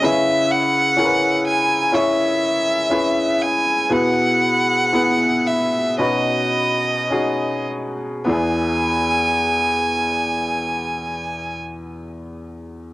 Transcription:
X:1
M:4/4
L:1/8
Q:1/4=55
K:E
V:1 name="Violin"
e f2 g e3 g | f3 e d3 z | g8 |]
V:2 name="Grand piano"
[CEGB]2 [CEG^AB]2 [CEGc]2 [CEGB]2 | [B,EGB]2 [B,EGB]2 [CDFB]2 [CDFG]2 | [B,EGB]8 |]
V:3 name="Grand piano" clef=bass
C,3 z4 z | B,,3 z B,,3 z | E,,8 |]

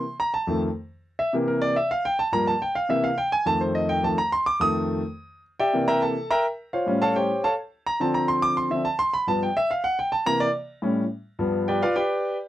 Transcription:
X:1
M:4/4
L:1/8
Q:1/4=212
K:Cmix
V:1 name="Grand piano"
c' b a2 z4 | e G B d e f g a | b a g f e f g _a | a c _e g a b c' d' |
_e'6 z [Gd=eg]- | [Gdeg] [Begb] [Aa]2 [Begb] z2 [Fc_df]- | [Fc_df] [A^c^ea] [G^Bcg]2 [Acea] z2 _b | a b c' d' c' e a c' |
=b a g e f ^f g a | b d z6 | z2 [G=Bdg] [FBdf] [GBdg]3 z |]
V:2 name="Grand piano" clef=bass
z3 [F,,_E,A,] z4 | z [C,E,B,]3 z4 | [G,,F,B,] z3 [C,E,B,] z3 | [F,,_E,A,]4 [F,,E,A,] z3 |
[F,,_E,A,]3 z4 z | [C,E,B,]3 z4 z | [A,,G,^C]3 z4 z | [D,F,C]4- [D,F,C] [D,F,C] z2 |
z [G,,F,=B,] z6 | [C,E,B,] z3 [A,,G,^C] z3 | [G,,F,=B,]3 z4 z |]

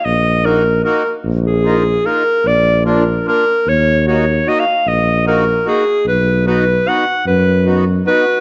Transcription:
X:1
M:3/4
L:1/16
Q:1/4=150
K:Ebm
V:1 name="Clarinet"
e4 B4 B3 z | z2 A6 B4 | =d4 B4 B4 | d4 d4 e f3 |
e4 B4 A4 | =B4 B4 ^f4 | =B4- B z3 B4 |]
V:2 name="Trumpet"
z12 | z12 | z12 | z12 |
z12 | z12 | z8 ^F4 |]
V:3 name="Accordion"
z4 [B,EG]2 z2 [B,EG]2 z2 | z4 [B,EF]2 z2 [B,EF]2 z2 | z4 [B,=DF]2 z2 [B,DF]2 z2 | z4 [B,EG]2 z2 [B,EG]2 z2 |
z4 [B,EG]2 z2 [B,EG]2 z2 | z4 [=B,^D^F]2 z2 [B,DF]2 z2 | z4 [=B,^D^F]2 z2 [B,DF]2 z2 |]
V:4 name="Tuba" clef=bass
B,,,12 | B,,,12 | B,,,12 | E,,12 |
B,,,12 | =B,,,12 | ^F,,12 |]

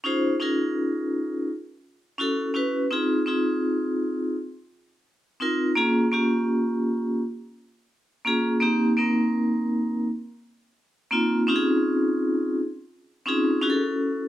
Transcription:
X:1
M:4/4
L:1/8
Q:"Swing 16ths" 1/4=84
K:Bbdor
V:1 name="Vibraphone"
[DEFAc] [DEFAB]3 z2 [^C=E^F=A] [CEF=B] | [CEFA] [CEFA]3 z3 [CEFB] | [B,DFA] [B,DFG]3 z3 [B,DFA] | [B,CEG] [B,CEB]3 z3 [B,CEF] |
[CDEFGA]3 z2 [CDEFA] [^C=E^FA=A]2 |]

